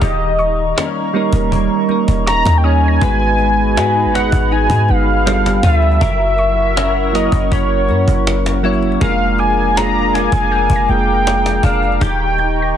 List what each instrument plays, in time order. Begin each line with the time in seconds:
Already playing: clean electric guitar A#4
0.01 808-style bass D#1, clean electric guitar D#3 G4, analog synth pad G3 D#5 A#5 C#6, soft synth lead D#5, cajon bass
0.39 synth pluck C#6, cajon slap
0.76 clean electric guitar A#3 C#4, cajon slap
1.14 synth keys G3 A#3 C#4 D#4 A#4, clean electric guitar A#3
1.33 808-style bass D#1, cajon bass
1.52 clean electric guitar A#3, cajon bass
1.88 synth keys G3 A#3 C#4 D#4 A#4, cajon slap
2.08 808-style bass D#1, cajon bass
2.26 soft synth lead A#5, synth pluck C#6, cajon slap
2.45 808-style bass D#2, cajon bass, cajon slap
2.58 soft synth lead G5
2.64 synth keys G3 A#3 C#4 D#4 C#5, clean electric guitar C#4, soft synth lead G#5, synth pluck D#6
2.88 synth pluck A#6
3.01 808-style bass G#1, synth keys G#3 B3 D#4 F#4 B4, clean electric guitar G#3 B4, analog synth pad F#4 G#4 B5, cajon bass
3.38 cajon slap
3.76 808-style bass G#2, clean electric guitar D#4 F#4 B4, cajon slap
4.05 808-style bass G#1
4.13 synth keys G#3 B3 D#4 F#4 B4, clean electric guitar D#4, soft synth lead F#5, cajon slap
4.32 808-style bass G#1, cajon bass
4.51 clean electric guitar D#4, soft synth lead G#5, cajon slap
4.70 808-style bass G#2, cajon bass
4.88 808-style bass G1, synth keys G#3 B3 D#4 F#4 B4, soft synth lead F5, cajon slap
5.25 synth keys G3 B3 D4 F4 A4, clean electric guitar G3, analog synth pad F4 A4 G5, cajon slap
5.46 cajon slap
5.63 808-style bass D2, clean electric guitar F4, soft synth lead E5, cajon bass
5.73 cajon slap
5.82 cajon slap
5.92 cajon slap
6.01 808-style bass F#1, clean electric guitar F#3 A#4, analog synth pad E4 A#4 F#5 C#6, cajon bass
6.38 synth pluck C#6, cajon slap
6.76 clean electric guitar C#4 E4 A#4, cajon slap
7.13 synth keys F#3 A#3 C#4 E4 A#4, clean electric guitar C#4, soft synth lead D#5, cajon slap
7.32 808-style bass F#1, cajon bass
7.51 808-style bass F#1, clean electric guitar C#4, soft synth lead C#5, cajon bass
7.88 808-style bass F#2, synth keys F#3 A#3 C#4 E4 A#4, cajon slap
8.08 808-style bass F#1, cajon bass
8.27 cajon slap
8.46 cajon slap
8.63 synth keys F#3 A#3 C#4 E4 C#5, clean electric guitar E4, cajon slap
8.73 cajon slap
8.82 cajon slap
8.92 cajon slap
9.01 808-style bass F1, clean electric guitar F3 G#4, synth keys G#3 A#3 C#4 F4 A#4, analog synth pad G#4 F5 A#5 D6, soft synth lead F5, cajon bass
9.09 synth keys D4
9.38 soft synth lead G#5, synth pluck D6, cajon slap
9.76 clean electric guitar A#3 D4 G#4, soft synth lead A#5, cajon slap
10.13 synth keys G#3 A#3 D4 F4 A#4, clean electric guitar A#3, soft synth lead G#5, cajon slap
10.32 808-style bass F1, cajon bass
10.51 clean electric guitar A#3, synth pluck G6, cajon slap
10.70 808-style bass F1, cajon bass
10.76 synth pluck A#6
10.88 808-style bass F1, synth keys G#3 A#3 D4 F4 G#4, soft synth lead G5, cajon slap
11.27 cajon slap
11.46 cajon slap
11.63 808-style bass F1, clean electric guitar D4, soft synth lead F5, cajon bass
11.73 cajon slap
11.83 cajon slap
11.92 cajon slap
12.01 808-style bass D#1, clean electric guitar D#3 G4, analog synth pad G4 D#5 C#6, soft synth lead G5, cajon bass
12.38 synth pluck G6, cajon slap
12.62 synth pluck A#6